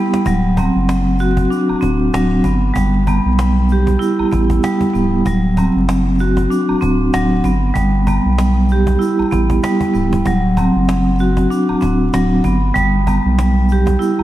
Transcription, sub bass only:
0.26 0.70 D1 loud
0.76 1.47 F#1 loud
1.70 1.75 D1 soft
1.83 2.10 D1 loud
2.14 2.41 D1 loud
2.44 2.72 G1 loud
2.76 3.20 G1 loud
3.26 3.97 B1 medium
4.20 4.25 A1 soft
4.33 4.60 A1 loud
4.95 5.22 C#1 medium
5.26 5.70 D1 loud
5.76 6.47 F#1 loud
6.70 6.75 D1 soft
6.83 7.10 D1 loud
7.14 7.41 D1 loud
7.44 7.72 G1 loud
7.76 8.20 G1 loud
8.26 8.97 B1 medium
9.19 9.24 A1 soft
9.33 9.60 A1 medium
9.95 10.22 C#1 medium
10.26 10.70 D1 loud
10.76 11.47 F#1 loud
11.70 11.75 D1 soft
11.83 12.10 D1 loud
12.14 12.41 D1 loud
12.44 12.72 G1 loud
12.76 13.20 G1 loud
13.26 13.97 B1 medium
14.20 14.23 A1 soft

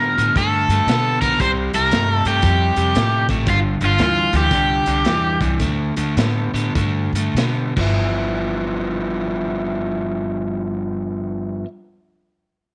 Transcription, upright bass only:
0.00 0.14 A2 medium
0.18 0.34 A2 medium
0.35 0.66 G2 medium
0.69 0.86 G2 medium
0.86 1.17 B2 medium
1.21 1.38 B1 medium
1.40 1.70 C2 medium
1.74 1.90 C2 medium
1.91 2.22 G2 loud
2.25 2.42 G2 medium
2.43 2.73 F2 loud
2.77 2.93 F2 medium
2.96 3.26 A2 medium
3.29 3.46 A1 medium
3.47 3.77 G1 loud
3.81 3.97 G1 loud
3.99 4.30 D2 medium
4.33 4.50 D2 loud
4.51 4.82 C2 medium
4.86 5.03 C2 medium
5.05 5.37 E2 medium
5.40 5.58 C2 medium
5.60 5.92 D2 loud
5.96 6.14 D2 medium
6.17 6.50 A2 medium
6.53 6.72 A2 medium
6.75 7.10 G2 medium
7.13 7.32 G2 medium
7.34 7.71 B2 medium
7.77 11.59 G1 medium

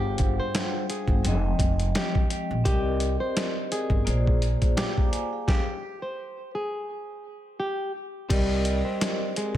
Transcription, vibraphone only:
0.00 1.02 G3 medium
0.00 1.03 D4 medium
0.00 1.03 F4 medium
0.00 1.26 G#4 medium
0.00 1.04 C5 medium
0.00 1.27 F5 medium
0.00 1.07 G5 medium
1.23 2.43 F3 medium
1.23 2.45 G#3 medium
1.23 2.44 C4 medium
1.23 2.44 G5 medium
1.27 2.45 D#5 medium
2.64 3.84 C4 medium
2.64 3.85 G4 medium
2.64 3.85 A#4 medium
2.64 3.86 D5 medium
2.68 3.86 D#5 medium
4.05 5.25 A#3 medium
4.05 5.26 F4 medium
4.05 4.77 G#4 medium
4.05 4.78 C5 medium
4.09 4.78 D5 medium
4.77 4.96 F5 medium
4.77 4.96 D6 medium
4.98 5.12 D5 medium
4.98 5.12 A#5 medium
5.11 5.31 G#5 medium
5.33 5.66 G#4 medium
5.33 5.66 F5 medium
8.29 9.49 C4 medium
8.29 9.50 G4 medium
8.29 9.50 A#4 medium
8.29 9.51 D5 medium
8.33 9.51 D#5 medium

